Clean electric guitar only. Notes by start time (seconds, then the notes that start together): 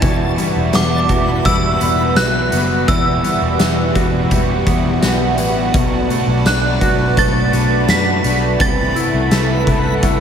Already playing: G3 E4 B4
0.02 E3
0.38 G3
0.73 B3
1.09 F#4
1.45 G3
1.81 B3
2.17 F#4
2.52 B3
2.88 E3
3.24 G3
3.59 B3
3.95 F#4
4.31 G3
4.67 B3
5.03 F#4
5.38 B3
5.74 B2
6.10 A3
6.46 D4
6.81 F#4
7.17 A3
7.53 D4
7.89 F#4
8.24 D4
8.59 C3
8.96 E4
9.31 A4
9.67 B4
10.03 E4